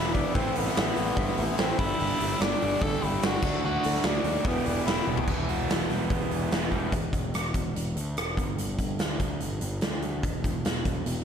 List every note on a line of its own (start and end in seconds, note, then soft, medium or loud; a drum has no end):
0.00 0.21 E1 medium
0.00 0.34 E2 medium
0.00 0.34 B2 medium
0.00 0.34 E3 medium
0.00 0.16 G3 medium
0.00 0.11 B3 loud
0.00 0.14 B3 medium
0.00 0.11 E4 medium
0.00 0.13 E4 medium
0.00 0.15 E4 medium
0.00 0.11 G4 medium
0.00 0.11 B4 loud
0.13 0.31 B3 medium
0.13 0.35 B3 medium
0.13 0.36 D4 medium
0.13 0.31 E4 medium
0.13 0.34 E4 medium
0.13 0.32 G4 medium
0.13 0.32 B4 medium
0.13 kick medium
0.13 open hi-hat medium
0.18 0.36 G3 medium
0.35 0.48 A1 medium
0.35 1.78 A2 medium
0.35 0.97 A2 medium
0.35 1.78 E3 medium
0.35 0.75 E3 medium
0.35 1.82 A3 loud
0.35 0.77 A3 medium
0.35 0.57 C4 loud
0.35 0.52 C4 loud
0.35 0.77 C4 medium
0.35 0.52 E4 loud
0.35 0.52 A4 medium
0.35 0.52 B4 loud
0.35 kick loud
0.35 open hi-hat medium
0.39 0.78 E4 loud
0.55 0.69 A1 medium
0.55 0.74 B3 medium
0.55 0.73 C4 medium
0.55 0.73 E4 medium
0.55 0.74 A4 medium
0.55 0.74 B4 loud
0.55 open hi-hat medium
0.67 snare soft
0.74 0.90 A1 medium
0.74 1.15 E3 medium
0.74 1.17 A3 medium
0.74 1.54 B3 medium
0.74 0.93 C4 medium
0.74 1.16 C4 medium
0.74 0.93 E4 medium
0.74 0.93 A4 medium
0.74 0.94 D5 medium
0.74 snare loud
0.74 open hi-hat medium
0.79 1.17 E4 medium
0.96 1.10 A1 medium
0.96 1.14 C4 medium
0.96 1.14 E4 medium
0.96 1.15 A4 medium
0.96 1.14 D5 medium
0.96 open hi-hat medium
1.15 1.30 G2 medium
1.15 1.58 A2 loud
1.15 1.56 E3 loud
1.15 1.40 A3 loud
1.15 1.37 C4 loud
1.15 1.35 C4 medium
1.15 1.36 E4 loud
1.15 1.35 E4 medium
1.15 1.35 A4 medium
1.15 kick loud
1.15 open hi-hat medium
1.20 1.35 B4 medium
1.37 1.51 A1 loud
1.37 1.58 A3 medium
1.37 1.58 C4 medium
1.37 1.59 E4 medium
1.37 1.56 E4 medium
1.37 open hi-hat medium
1.41 1.56 C4 medium
1.41 1.56 A4 medium
1.41 1.56 C5 loud
1.57 1.72 A1 medium
1.57 1.77 E3 medium
1.57 1.78 A3 medium
1.57 1.78 C4 medium
1.57 1.77 C4 medium
1.57 1.76 C4 medium
1.57 1.76 E4 medium
1.57 snare loud
1.57 open hi-hat medium
1.62 1.77 A4 medium
1.62 1.77 B4 loud
1.70 snare soft
1.77 1.92 G1 loud
1.77 3.42 G2 medium
1.77 3.42 D3 medium
1.77 1.95 G3 medium
1.77 3.42 G3 loud
1.77 1.97 A3 medium
1.77 1.98 D4 medium
1.77 2.13 D4 medium
1.77 2.43 E4 loud
1.77 1.99 G4 medium
1.77 kick loud
1.77 open hi-hat medium
1.82 2.13 G4 medium
1.82 2.13 A4 medium
1.82 2.14 D5 medium
1.96 2.13 G1 medium
1.96 2.37 G3 loud
1.96 2.39 A3 medium
1.96 2.39 D4 loud
1.96 2.40 G4 loud
1.96 open hi-hat medium
2.20 2.33 G1 medium
2.20 2.37 D4 medium
2.20 2.37 G4 medium
2.20 2.38 A4 medium
2.20 2.38 E5 loud
2.20 open hi-hat medium
2.38 2.53 G1 medium
2.38 2.78 G3 medium
2.38 2.79 A3 medium
2.38 2.80 D4 medium
2.38 2.57 D4 medium
2.38 2.84 D4 loud
2.38 2.57 G4 medium
2.38 2.81 G4 medium
2.38 snare loud
2.38 open hi-hat medium
2.42 2.58 D5 medium
2.62 2.75 G1 medium
2.62 2.78 D4 medium
2.62 2.79 G4 medium
2.62 2.78 A4 medium
2.62 2.78 D5 medium
2.62 open hi-hat medium
2.79 2.94 G1 loud
2.79 3.19 G3 medium
2.79 3.02 A3 loud
2.79 3.01 D4 loud
2.79 2.98 D4 medium
2.79 2.99 G4 loud
2.79 2.98 G4 medium
2.79 3.05 A4 loud
2.79 2.99 A4 medium
2.79 2.98 D5 medium
2.79 kick loud
2.79 open hi-hat medium
3.00 3.16 G1 loud
3.00 3.21 A3 medium
3.00 3.18 D4 medium
3.00 3.22 D4 medium
3.00 3.23 E4 loud
3.00 3.23 G4 medium
3.00 3.18 G4 medium
3.00 3.19 A4 medium
3.00 3.19 D5 medium
3.00 open hi-hat medium
3.20 3.36 G1 medium
3.20 3.41 G3 medium
3.20 3.42 A3 medium
3.20 3.39 D4 medium
3.20 3.41 D4 medium
3.20 3.39 G4 medium
3.20 3.39 A4 medium
3.20 snare loud
3.20 open hi-hat medium
3.24 3.62 F#4 loud
3.24 3.41 G4 medium
3.24 3.40 D5 loud
3.42 3.55 D2 loud
3.42 4.44 D3 loud
3.42 3.60 D3 medium
3.42 3.61 F#3 medium
3.42 3.61 A3 medium
3.42 4.45 A3 loud
3.42 3.63 D4 medium
3.42 4.45 D4 loud
3.42 3.76 E4 medium
3.42 3.63 F#4 medium
3.42 3.76 F#4 medium
3.42 3.77 A4 medium
3.42 3.76 D5 medium
3.42 kick loud
3.42 crash medium
3.61 3.77 D2 loud
3.61 4.24 D3 medium
3.61 4.02 F#3 medium
3.61 4.03 A3 loud
3.61 4.04 D4 medium
3.61 4.05 F#4 medium
3.65 4.08 F#4 loud
3.83 3.98 D2 medium
3.83 4.00 E4 medium
3.83 4.00 F#4 medium
3.83 4.01 A4 medium
3.83 4.01 D5 loud
3.83 open hi-hat medium
3.95 snare soft
4.03 4.17 D2 loud
4.03 4.43 F#3 medium
4.03 4.44 A3 medium
4.03 4.45 D4 medium
4.03 4.49 D4 medium
4.03 4.20 E4 medium
4.03 4.21 F#4 medium
4.03 4.45 F#4 medium
4.03 4.21 A4 medium
4.03 4.21 D5 medium
4.03 snare loud
4.03 open hi-hat medium
4.24 4.37 D#2 medium
4.24 4.41 E4 medium
4.24 4.41 F#4 medium
4.24 4.41 A4 medium
4.24 4.42 D5 medium
4.24 open hi-hat medium
4.44 4.58 E1 loud
4.44 5.27 E2 loud
4.44 5.27 B2 loud
4.44 4.84 E3 loud
4.44 4.66 B3 loud
4.44 4.67 B3 loud
4.44 4.61 E4 medium
4.44 4.65 E4 loud
4.44 4.62 F#4 medium
4.44 4.62 G4 medium
4.44 4.63 G4 loud
4.44 4.62 B4 medium
4.44 kick loud
4.44 open hi-hat medium
4.48 5.27 E3 loud
4.64 4.79 E1 loud
4.64 4.85 B3 medium
4.64 4.86 D4 medium
4.64 4.82 E4 medium
4.64 4.86 E4 medium
4.64 4.82 F#4 medium
4.64 4.87 G4 medium
4.64 4.82 G4 medium
4.64 4.82 B4 medium
4.64 open hi-hat medium
4.85 5.00 E1 medium
4.85 5.26 E3 medium
4.85 5.07 B3 medium
4.85 5.03 E4 medium
4.85 5.15 E4 medium
4.85 5.06 E4 medium
4.85 5.03 F#4 medium
4.85 5.03 G4 medium
4.85 5.04 G4 medium
4.85 5.03 B4 medium
4.85 snare medium
4.85 open hi-hat medium
5.05 5.20 E1 medium
5.05 5.27 B3 medium
5.05 5.23 E4 medium
5.05 5.27 E4 medium
5.05 5.23 F#4 medium
5.05 5.26 G4 medium
5.05 5.23 G4 medium
5.05 5.24 D5 medium
5.05 high tom medium
5.17 floor tom medium
5.26 5.67 E1 medium
5.26 6.70 E2 medium
5.26 6.71 B2 medium
5.26 6.31 E3 medium
5.26 6.70 E3 medium
5.26 kick loud
5.26 crash medium
5.49 6.52 F#4 medium
5.49 open hi-hat medium
5.70 5.89 E1 medium
5.70 6.09 B3 medium
5.70 snare loud
5.70 open hi-hat medium
5.90 6.09 E1 medium
5.90 6.71 G3 medium
5.90 snare soft
5.90 open hi-hat medium
6.10 6.49 E1 medium
6.10 6.52 B3 medium
6.10 kick loud
6.10 open hi-hat medium
6.31 6.93 E3 medium
6.31 open hi-hat medium
6.51 6.71 E1 medium
6.51 6.93 B3 medium
6.51 snare medium
6.51 open hi-hat medium
6.71 6.92 E1 medium
6.71 6.93 E2 medium
6.71 6.92 B2 medium
6.71 6.91 E3 medium
6.71 6.93 G3 medium
6.71 kick medium
6.71 open hi-hat soft
6.92 7.11 E1 medium
6.92 kick medium
6.92 closed hi-hat medium
7.13 7.32 E1 medium
7.13 kick medium
7.13 closed hi-hat medium
7.34 7.53 E1 medium
7.34 cross-stick loud
7.34 closed hi-hat medium
7.54 7.73 E1 medium
7.54 kick medium
7.54 closed hi-hat medium
7.76 7.94 E1 medium
7.76 closed hi-hat medium
7.96 8.15 D2 medium
7.96 closed hi-hat medium
8.17 8.36 E1 medium
8.17 cross-stick loud
8.17 closed hi-hat medium
8.37 8.56 G1 medium
8.37 kick medium
8.37 closed hi-hat medium
8.58 8.77 G1 medium
8.58 closed hi-hat medium
8.79 8.98 G1 medium
8.79 kick medium
8.79 closed hi-hat medium
8.99 9.19 D2 medium
8.99 snare medium
8.99 closed hi-hat medium
9.20 9.39 D2 medium
9.20 kick medium
9.20 closed hi-hat medium
9.40 9.60 G1 medium
9.40 closed hi-hat medium
9.61 9.81 G1 medium
9.61 closed hi-hat medium
9.81 10.25 D2 medium
9.81 snare medium
9.81 closed hi-hat medium
10.02 closed hi-hat soft
10.23 10.43 E1 medium
10.23 kick medium
10.23 closed hi-hat medium
10.44 10.63 E1 medium
10.44 kick medium
10.44 closed hi-hat medium
10.65 10.84 E1 medium
10.65 snare medium
10.65 closed hi-hat medium
10.85 11.05 E1 medium
10.85 kick medium
10.85 closed hi-hat medium
11.06 11.24 E1 medium
11.06 closed hi-hat medium